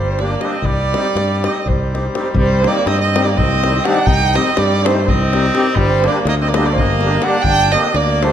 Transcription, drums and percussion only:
0.06 davul high soft
0.19 davul high medium
0.41 davul high medium
0.64 davul low medium
0.80 davul high soft
0.94 davul high medium
1.05 davul high soft
1.17 davul high medium
1.31 davul high soft
1.44 davul high medium
1.56 davul high soft
1.69 davul low medium
1.95 davul high medium
2.05 davul high soft
2.15 davul high medium
2.26 davul high soft
2.35 davul low medium
2.64 davul high medium
2.87 davul high medium
3.01 davul high soft
3.16 davul high medium
3.38 davul low medium
3.52 davul high soft
3.64 davul high medium
3.76 davul high soft
3.85 davul high medium
4.07 davul low loud
4.35 davul high medium
4.57 davul high medium
4.73 davul high soft
4.86 davul high medium
5.08 davul low loud
5.21 davul high soft
5.33 davul high medium
5.44 davul high soft
5.55 davul high medium
5.76 davul low medium
6.04 davul high medium
6.27 davul high medium
6.42 davul high soft
6.54 davul high medium
6.78 davul low medium
6.89 davul high soft
7.01 davul high soft
7.22 davul high medium
7.44 davul low medium
7.59 davul high soft
7.72 davul high medium
7.83 davul high soft
7.95 davul high medium
8.08 davul high soft
8.23 davul high medium

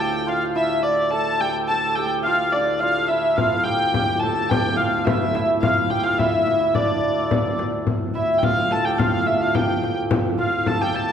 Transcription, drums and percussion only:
3.38 frame drum medium
3.66 frame drum soft
3.94 frame drum medium
4.23 frame drum medium
4.51 frame drum medium
4.79 frame drum soft
5.07 frame drum loud
5.35 frame drum medium
5.63 frame drum medium
5.90 frame drum soft
6.19 frame drum medium
6.47 frame drum medium
6.75 frame drum medium
7.31 frame drum medium
7.59 frame drum medium
7.87 frame drum medium
8.43 frame drum medium
8.71 frame drum medium
8.99 frame drum medium
9.55 frame drum medium
9.83 frame drum medium
10.11 frame drum medium
10.66 frame drum medium
10.94 frame drum medium

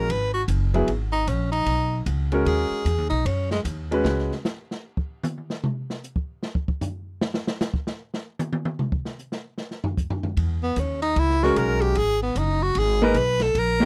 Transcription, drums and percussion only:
0.09 kick soft
0.09 ride medium
0.48 kick soft
0.48 hi-hat pedal medium
0.48 ride medium
0.74 ride soft
0.88 kick soft
0.88 ride medium
1.27 kick soft
1.27 hi-hat pedal medium
1.27 ride medium
1.53 ride soft
1.66 kick soft
1.66 ride medium
2.06 kick soft
2.06 hi-hat pedal soft
2.06 ride medium
2.32 ride soft
2.46 kick soft
2.46 ride medium
2.85 kick soft
2.85 hi-hat pedal medium
2.85 ride medium
3.10 ride soft
3.25 kick soft
3.25 ride medium
3.51 snare medium
3.65 kick soft
3.65 hi-hat pedal medium
3.65 ride medium
3.92 ride soft
4.05 snare medium
4.19 snare soft
4.32 snare soft
4.45 snare medium
4.45 hi-hat pedal soft
4.71 snare soft
4.97 kick medium
5.23 hi-hat pedal medium
5.23 high tom medium
5.38 high tom soft
5.50 snare medium
5.64 mid tom loud
5.90 snare soft
6.04 hi-hat pedal medium
6.16 kick medium
6.43 snare medium
6.55 kick medium
6.68 kick medium
6.81 floor tom medium
6.81 hi-hat pedal medium
7.21 snare loud
7.34 snare medium
7.47 snare medium
7.61 snare medium
7.61 hi-hat pedal medium
7.74 kick medium
7.87 snare medium
8.14 snare medium
8.39 hi-hat pedal medium
8.39 high tom medium
8.53 high tom medium
8.65 high tom medium
8.79 mid tom medium
8.92 kick medium
9.05 snare soft
9.19 hi-hat pedal medium
9.32 snare soft
9.58 snare soft
9.71 snare soft
9.84 floor tom loud
9.97 kick medium
9.97 hi-hat pedal medium
10.10 floor tom medium
10.23 floor tom loud
10.37 kick soft
10.37 ride medium
10.76 kick soft
10.76 hi-hat pedal medium
10.76 ride medium
11.02 ride medium
11.16 kick soft
11.16 ride medium
11.30 snare soft
11.43 snare medium
11.56 kick soft
11.56 hi-hat pedal soft
11.56 ride medium
11.82 ride soft
11.95 kick soft
11.95 ride medium
12.36 kick soft
12.36 hi-hat pedal medium
12.36 ride medium
12.75 kick soft
12.75 ride medium
13.14 kick soft
13.14 hi-hat pedal medium
13.14 ride medium
13.40 snare medium
13.40 ride medium
13.55 kick soft
13.55 ride medium

